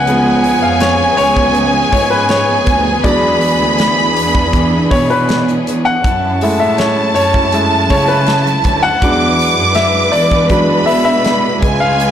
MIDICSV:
0, 0, Header, 1, 6, 480
1, 0, Start_track
1, 0, Tempo, 745342
1, 48, Time_signature, 4, 2, 24, 8
1, 7799, End_track
2, 0, Start_track
2, 0, Title_t, "Violin section"
2, 0, Program_c, 0, 48
2, 0, Note_on_c, 0, 80, 127
2, 1932, Note_off_c, 0, 80, 0
2, 1963, Note_on_c, 0, 83, 115
2, 3654, Note_off_c, 0, 83, 0
2, 3887, Note_on_c, 0, 81, 115
2, 5787, Note_off_c, 0, 81, 0
2, 5803, Note_on_c, 0, 86, 127
2, 6761, Note_off_c, 0, 86, 0
2, 6763, Note_on_c, 0, 83, 107
2, 7461, Note_off_c, 0, 83, 0
2, 7490, Note_on_c, 0, 80, 123
2, 7799, Note_off_c, 0, 80, 0
2, 7799, End_track
3, 0, Start_track
3, 0, Title_t, "Grand piano"
3, 0, Program_c, 1, 0
3, 0, Control_c, 1, 64, 127
3, 0, Note_on_c, 1, 71, 105
3, 0, Note_on_c, 1, 78, 126
3, 48, Note_on_c, 1, 53, 56
3, 51, Note_on_c, 1, 56, 51
3, 55, Note_on_c, 1, 59, 67
3, 365, Note_off_c, 1, 53, 0
3, 367, Note_off_c, 1, 56, 0
3, 369, Note_off_c, 1, 59, 0
3, 402, Note_on_c, 1, 77, 93
3, 416, Note_off_c, 1, 78, 0
3, 521, Note_on_c, 1, 73, 111
3, 526, Note_off_c, 1, 77, 0
3, 744, Note_off_c, 1, 73, 0
3, 755, Note_on_c, 1, 73, 121
3, 1226, Note_off_c, 1, 73, 0
3, 1236, Note_on_c, 1, 73, 91
3, 1355, Note_off_c, 1, 71, 0
3, 1355, Note_on_c, 1, 71, 87
3, 1362, Note_off_c, 1, 73, 0
3, 1477, Note_on_c, 1, 73, 97
3, 1481, Note_off_c, 1, 71, 0
3, 1930, Note_off_c, 1, 73, 0
3, 1956, Note_on_c, 1, 74, 98
3, 1957, Note_on_c, 1, 54, 54
3, 1962, Note_on_c, 1, 56, 54
3, 1966, Control_c, 1, 64, 0
3, 1967, Note_on_c, 1, 62, 56
3, 2066, Control_c, 1, 64, 127
3, 2275, Note_off_c, 1, 54, 0
3, 2278, Note_off_c, 1, 56, 0
3, 2280, Note_off_c, 1, 62, 0
3, 3160, Note_on_c, 1, 73, 85
3, 3197, Note_off_c, 1, 74, 0
3, 3275, Note_off_c, 1, 73, 0
3, 3286, Note_on_c, 1, 71, 83
3, 3768, Note_on_c, 1, 78, 103
3, 3788, Note_off_c, 1, 71, 0
3, 3902, Control_c, 1, 64, 0
3, 4025, Control_c, 1, 64, 127
3, 4135, Note_on_c, 1, 56, 60
3, 4139, Note_on_c, 1, 57, 53
3, 4143, Note_on_c, 1, 64, 62
3, 4249, Note_on_c, 1, 76, 82
3, 4265, Note_off_c, 1, 78, 0
3, 4281, Note_off_c, 1, 76, 0
3, 4366, Note_on_c, 1, 73, 82
3, 4593, Note_off_c, 1, 73, 0
3, 4602, Note_on_c, 1, 73, 97
3, 4830, Note_off_c, 1, 56, 0
3, 4832, Note_off_c, 1, 57, 0
3, 4834, Note_off_c, 1, 64, 0
3, 4852, Note_on_c, 1, 56, 52
3, 4857, Note_on_c, 1, 57, 40
3, 4859, Note_on_c, 1, 64, 59
3, 5066, Note_off_c, 1, 73, 0
3, 5071, Note_off_c, 1, 56, 0
3, 5073, Note_off_c, 1, 57, 0
3, 5075, Note_off_c, 1, 64, 0
3, 5089, Note_on_c, 1, 73, 92
3, 5121, Note_off_c, 1, 73, 0
3, 5204, Note_on_c, 1, 71, 88
3, 5664, Note_off_c, 1, 71, 0
3, 5684, Note_on_c, 1, 78, 117
3, 5807, Note_on_c, 1, 54, 52
3, 5812, Note_on_c, 1, 56, 48
3, 5814, Note_on_c, 1, 62, 68
3, 5824, Control_c, 1, 64, 0
3, 5936, Control_c, 1, 64, 127
3, 6280, Note_on_c, 1, 76, 94
3, 6302, Note_off_c, 1, 78, 0
3, 6498, Note_off_c, 1, 54, 0
3, 6501, Note_off_c, 1, 56, 0
3, 6502, Note_off_c, 1, 62, 0
3, 6516, Note_on_c, 1, 74, 102
3, 6530, Note_off_c, 1, 76, 0
3, 6766, Note_on_c, 1, 54, 52
3, 6768, Note_on_c, 1, 56, 48
3, 6770, Note_on_c, 1, 62, 58
3, 6982, Note_off_c, 1, 54, 0
3, 6983, Note_off_c, 1, 56, 0
3, 6985, Note_off_c, 1, 62, 0
3, 6993, Note_on_c, 1, 76, 91
3, 7015, Note_off_c, 1, 74, 0
3, 7105, Note_off_c, 1, 76, 0
3, 7115, Note_on_c, 1, 76, 111
3, 7495, Control_c, 1, 64, 0
3, 7601, Note_on_c, 1, 77, 112
3, 7613, Control_c, 1, 64, 127
3, 7617, Note_off_c, 1, 76, 0
3, 7799, Note_off_c, 1, 77, 0
3, 7799, End_track
4, 0, Start_track
4, 0, Title_t, "String section"
4, 0, Program_c, 2, 48
4, 0, Note_on_c, 2, 53, 85
4, 0, Note_on_c, 2, 59, 84
4, 0, Note_on_c, 2, 61, 86
4, 0, Note_on_c, 2, 68, 98
4, 1937, Note_off_c, 2, 53, 0
4, 1937, Note_off_c, 2, 61, 0
4, 1958, Note_on_c, 2, 52, 89
4, 1959, Note_on_c, 2, 62, 79
4, 3861, Note_off_c, 2, 59, 0
4, 3863, Note_off_c, 2, 68, 0
4, 3874, Note_off_c, 2, 52, 0
4, 3874, Note_off_c, 2, 62, 0
4, 3901, Note_on_c, 2, 61, 79
4, 3902, Note_on_c, 2, 54, 76
4, 3903, Note_on_c, 2, 81, 89
4, 3905, Note_on_c, 2, 64, 72
4, 5800, Note_off_c, 2, 61, 0
4, 5801, Note_off_c, 2, 54, 0
4, 5801, Note_off_c, 2, 81, 0
4, 5808, Note_on_c, 2, 56, 92
4, 5812, Note_on_c, 2, 62, 76
4, 5812, Note_on_c, 2, 71, 98
4, 7469, Note_off_c, 2, 64, 0
4, 7470, Note_off_c, 2, 62, 0
4, 7470, Note_off_c, 2, 71, 0
4, 7485, Note_on_c, 2, 71, 98
4, 7487, Note_on_c, 2, 61, 80
4, 7489, Note_on_c, 2, 65, 91
4, 7799, Note_off_c, 2, 56, 0
4, 7799, Note_off_c, 2, 61, 0
4, 7799, Note_off_c, 2, 65, 0
4, 7799, Note_off_c, 2, 71, 0
4, 7799, End_track
5, 0, Start_track
5, 0, Title_t, "Cello section"
5, 0, Program_c, 3, 48
5, 0, Note_on_c, 3, 37, 100
5, 379, Note_off_c, 3, 37, 0
5, 409, Note_on_c, 3, 41, 106
5, 739, Note_off_c, 3, 41, 0
5, 763, Note_on_c, 3, 37, 109
5, 1216, Note_off_c, 3, 37, 0
5, 1242, Note_on_c, 3, 44, 82
5, 1695, Note_off_c, 3, 44, 0
5, 1720, Note_on_c, 3, 38, 94
5, 1941, Note_off_c, 3, 38, 0
5, 1960, Note_on_c, 3, 40, 107
5, 2292, Note_off_c, 3, 40, 0
5, 2313, Note_on_c, 3, 38, 92
5, 2650, Note_off_c, 3, 38, 0
5, 2673, Note_on_c, 3, 40, 100
5, 3134, Note_off_c, 3, 40, 0
5, 3164, Note_on_c, 3, 47, 97
5, 3626, Note_off_c, 3, 47, 0
5, 3653, Note_on_c, 3, 40, 80
5, 3877, Note_off_c, 3, 40, 0
5, 3892, Note_on_c, 3, 42, 95
5, 4227, Note_off_c, 3, 42, 0
5, 4252, Note_on_c, 3, 45, 81
5, 4587, Note_off_c, 3, 45, 0
5, 4607, Note_on_c, 3, 42, 96
5, 5068, Note_off_c, 3, 42, 0
5, 5091, Note_on_c, 3, 49, 101
5, 5549, Note_off_c, 3, 49, 0
5, 5572, Note_on_c, 3, 38, 98
5, 5796, Note_off_c, 3, 38, 0
5, 5811, Note_on_c, 3, 40, 116
5, 6144, Note_off_c, 3, 40, 0
5, 6169, Note_on_c, 3, 42, 98
5, 6501, Note_off_c, 3, 42, 0
5, 6525, Note_on_c, 3, 40, 108
5, 6979, Note_off_c, 3, 40, 0
5, 7005, Note_on_c, 3, 47, 110
5, 7462, Note_off_c, 3, 47, 0
5, 7485, Note_on_c, 3, 37, 104
5, 7799, Note_off_c, 3, 37, 0
5, 7799, End_track
6, 0, Start_track
6, 0, Title_t, "Drums"
6, 46, Note_on_c, 9, 44, 65
6, 46, Note_on_c, 9, 46, 85
6, 111, Note_off_c, 9, 44, 0
6, 111, Note_off_c, 9, 46, 0
6, 283, Note_on_c, 9, 44, 66
6, 283, Note_on_c, 9, 46, 65
6, 347, Note_off_c, 9, 44, 0
6, 348, Note_off_c, 9, 46, 0
6, 517, Note_on_c, 9, 46, 106
6, 520, Note_on_c, 9, 44, 65
6, 526, Note_on_c, 9, 38, 125
6, 582, Note_off_c, 9, 46, 0
6, 584, Note_off_c, 9, 44, 0
6, 591, Note_off_c, 9, 38, 0
6, 758, Note_on_c, 9, 44, 64
6, 760, Note_on_c, 9, 46, 69
6, 822, Note_off_c, 9, 44, 0
6, 825, Note_off_c, 9, 46, 0
6, 879, Note_on_c, 9, 36, 87
6, 944, Note_off_c, 9, 36, 0
6, 995, Note_on_c, 9, 46, 87
6, 996, Note_on_c, 9, 44, 62
6, 1060, Note_off_c, 9, 46, 0
6, 1061, Note_off_c, 9, 44, 0
6, 1238, Note_on_c, 9, 44, 72
6, 1239, Note_on_c, 9, 46, 71
6, 1241, Note_on_c, 9, 36, 90
6, 1303, Note_off_c, 9, 44, 0
6, 1303, Note_off_c, 9, 46, 0
6, 1305, Note_off_c, 9, 36, 0
6, 1473, Note_on_c, 9, 46, 92
6, 1475, Note_on_c, 9, 44, 58
6, 1482, Note_on_c, 9, 38, 103
6, 1538, Note_off_c, 9, 46, 0
6, 1540, Note_off_c, 9, 44, 0
6, 1547, Note_off_c, 9, 38, 0
6, 1716, Note_on_c, 9, 46, 77
6, 1717, Note_on_c, 9, 44, 69
6, 1719, Note_on_c, 9, 36, 99
6, 1780, Note_off_c, 9, 46, 0
6, 1782, Note_off_c, 9, 44, 0
6, 1784, Note_off_c, 9, 36, 0
6, 1960, Note_on_c, 9, 36, 127
6, 1960, Note_on_c, 9, 44, 66
6, 1960, Note_on_c, 9, 46, 86
6, 2024, Note_off_c, 9, 36, 0
6, 2024, Note_off_c, 9, 44, 0
6, 2024, Note_off_c, 9, 46, 0
6, 2196, Note_on_c, 9, 44, 63
6, 2197, Note_on_c, 9, 46, 65
6, 2261, Note_off_c, 9, 44, 0
6, 2261, Note_off_c, 9, 46, 0
6, 2437, Note_on_c, 9, 46, 98
6, 2440, Note_on_c, 9, 44, 73
6, 2446, Note_on_c, 9, 38, 127
6, 2502, Note_off_c, 9, 46, 0
6, 2504, Note_off_c, 9, 44, 0
6, 2511, Note_off_c, 9, 38, 0
6, 2680, Note_on_c, 9, 44, 63
6, 2683, Note_on_c, 9, 46, 74
6, 2745, Note_off_c, 9, 44, 0
6, 2747, Note_off_c, 9, 46, 0
6, 2800, Note_on_c, 9, 36, 86
6, 2864, Note_off_c, 9, 36, 0
6, 2919, Note_on_c, 9, 46, 83
6, 2920, Note_on_c, 9, 36, 86
6, 2920, Note_on_c, 9, 44, 69
6, 2983, Note_off_c, 9, 46, 0
6, 2984, Note_off_c, 9, 36, 0
6, 2984, Note_off_c, 9, 44, 0
6, 3163, Note_on_c, 9, 44, 64
6, 3164, Note_on_c, 9, 36, 93
6, 3164, Note_on_c, 9, 46, 61
6, 3228, Note_off_c, 9, 44, 0
6, 3228, Note_off_c, 9, 46, 0
6, 3229, Note_off_c, 9, 36, 0
6, 3288, Note_on_c, 9, 46, 51
6, 3353, Note_off_c, 9, 46, 0
6, 3406, Note_on_c, 9, 46, 87
6, 3408, Note_on_c, 9, 44, 58
6, 3415, Note_on_c, 9, 38, 103
6, 3470, Note_off_c, 9, 46, 0
6, 3472, Note_off_c, 9, 44, 0
6, 3479, Note_off_c, 9, 38, 0
6, 3530, Note_on_c, 9, 44, 66
6, 3594, Note_off_c, 9, 44, 0
6, 3653, Note_on_c, 9, 46, 76
6, 3654, Note_on_c, 9, 44, 66
6, 3717, Note_off_c, 9, 46, 0
6, 3719, Note_off_c, 9, 44, 0
6, 3892, Note_on_c, 9, 44, 68
6, 3892, Note_on_c, 9, 46, 91
6, 3893, Note_on_c, 9, 36, 121
6, 3956, Note_off_c, 9, 44, 0
6, 3956, Note_off_c, 9, 46, 0
6, 3957, Note_off_c, 9, 36, 0
6, 4130, Note_on_c, 9, 44, 65
6, 4130, Note_on_c, 9, 46, 73
6, 4194, Note_off_c, 9, 44, 0
6, 4195, Note_off_c, 9, 46, 0
6, 4368, Note_on_c, 9, 46, 107
6, 4370, Note_on_c, 9, 44, 71
6, 4377, Note_on_c, 9, 38, 118
6, 4432, Note_off_c, 9, 46, 0
6, 4435, Note_off_c, 9, 44, 0
6, 4442, Note_off_c, 9, 38, 0
6, 4606, Note_on_c, 9, 44, 65
6, 4608, Note_on_c, 9, 46, 70
6, 4670, Note_off_c, 9, 44, 0
6, 4673, Note_off_c, 9, 46, 0
6, 4728, Note_on_c, 9, 36, 89
6, 4793, Note_off_c, 9, 36, 0
6, 4845, Note_on_c, 9, 46, 94
6, 4846, Note_on_c, 9, 44, 60
6, 4909, Note_off_c, 9, 46, 0
6, 4910, Note_off_c, 9, 44, 0
6, 5087, Note_on_c, 9, 44, 60
6, 5087, Note_on_c, 9, 46, 67
6, 5090, Note_on_c, 9, 36, 93
6, 5151, Note_off_c, 9, 44, 0
6, 5151, Note_off_c, 9, 46, 0
6, 5155, Note_off_c, 9, 36, 0
6, 5209, Note_on_c, 9, 46, 55
6, 5273, Note_off_c, 9, 46, 0
6, 5323, Note_on_c, 9, 46, 89
6, 5326, Note_on_c, 9, 44, 64
6, 5333, Note_on_c, 9, 38, 112
6, 5388, Note_off_c, 9, 46, 0
6, 5390, Note_off_c, 9, 44, 0
6, 5397, Note_off_c, 9, 38, 0
6, 5450, Note_on_c, 9, 44, 66
6, 5515, Note_off_c, 9, 44, 0
6, 5564, Note_on_c, 9, 46, 80
6, 5566, Note_on_c, 9, 44, 72
6, 5570, Note_on_c, 9, 36, 91
6, 5629, Note_off_c, 9, 46, 0
6, 5630, Note_off_c, 9, 44, 0
6, 5634, Note_off_c, 9, 36, 0
6, 5808, Note_on_c, 9, 44, 71
6, 5808, Note_on_c, 9, 46, 85
6, 5809, Note_on_c, 9, 36, 127
6, 5873, Note_off_c, 9, 44, 0
6, 5873, Note_off_c, 9, 46, 0
6, 5874, Note_off_c, 9, 36, 0
6, 6046, Note_on_c, 9, 44, 60
6, 6047, Note_on_c, 9, 46, 69
6, 6111, Note_off_c, 9, 44, 0
6, 6111, Note_off_c, 9, 46, 0
6, 6277, Note_on_c, 9, 46, 102
6, 6279, Note_on_c, 9, 44, 76
6, 6286, Note_on_c, 9, 38, 109
6, 6341, Note_off_c, 9, 46, 0
6, 6344, Note_off_c, 9, 44, 0
6, 6350, Note_off_c, 9, 38, 0
6, 6405, Note_on_c, 9, 46, 47
6, 6469, Note_off_c, 9, 46, 0
6, 6521, Note_on_c, 9, 44, 65
6, 6523, Note_on_c, 9, 46, 70
6, 6585, Note_off_c, 9, 44, 0
6, 6588, Note_off_c, 9, 46, 0
6, 6640, Note_on_c, 9, 44, 59
6, 6642, Note_on_c, 9, 36, 88
6, 6705, Note_off_c, 9, 44, 0
6, 6707, Note_off_c, 9, 36, 0
6, 6758, Note_on_c, 9, 46, 95
6, 6760, Note_on_c, 9, 44, 64
6, 6761, Note_on_c, 9, 36, 93
6, 6823, Note_off_c, 9, 46, 0
6, 6824, Note_off_c, 9, 44, 0
6, 6826, Note_off_c, 9, 36, 0
6, 7002, Note_on_c, 9, 44, 68
6, 7002, Note_on_c, 9, 46, 69
6, 7066, Note_off_c, 9, 44, 0
6, 7067, Note_off_c, 9, 46, 0
6, 7242, Note_on_c, 9, 46, 103
6, 7244, Note_on_c, 9, 44, 65
6, 7251, Note_on_c, 9, 38, 97
6, 7306, Note_off_c, 9, 46, 0
6, 7308, Note_off_c, 9, 44, 0
6, 7315, Note_off_c, 9, 38, 0
6, 7486, Note_on_c, 9, 46, 89
6, 7487, Note_on_c, 9, 36, 98
6, 7488, Note_on_c, 9, 44, 68
6, 7551, Note_off_c, 9, 36, 0
6, 7551, Note_off_c, 9, 46, 0
6, 7552, Note_off_c, 9, 44, 0
6, 7727, Note_on_c, 9, 44, 73
6, 7727, Note_on_c, 9, 46, 98
6, 7791, Note_off_c, 9, 46, 0
6, 7792, Note_off_c, 9, 44, 0
6, 7799, End_track
0, 0, End_of_file